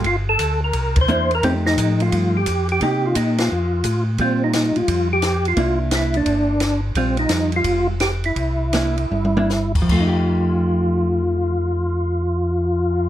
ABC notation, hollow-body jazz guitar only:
X:1
M:4/4
L:1/8
Q:"Swing" 1/4=174
K:Fmix
V:1 name="Hollow-body jazz guitar"
z6 [B,D=E] z | [F,A,EG]4- [F,A,EG] z3 | [B,EG]4 z4 | [G,F]4- [G,F] z3 |
[B,D=E]4- [B,DE] z3 | [G,F]4- [G,F] z3 | z2 [B,D=E] z2 [B,DE] z2 | [F,A,EG]8- |
[F,A,EG]8 |]